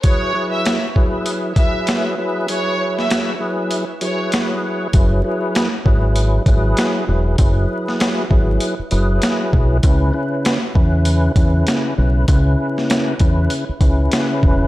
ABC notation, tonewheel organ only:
X:1
M:4/4
L:1/8
Q:"Swing 16ths" 1/4=98
K:F#dor
V:1 name="Tonewheel organ"
[F,EGB] [F,EGB] z [F,EGB]2 [F,EGB]2 [F,EGB] | [F,GB]3 [F,EGB] z [F,EGB]3 | [F,EGB] [F,EGB] z [F,EGB]2 [F,EGB]2 [F,EGB] | [F,EGB]3 [F,EGB] z [F,EGB]3 |
[C,CEB] [C,CEB] z [C,CEB]2 [C,CEB]2 [C,CEB] | [C,CEB]3 [C,CEB] z [C,CEB]3 |]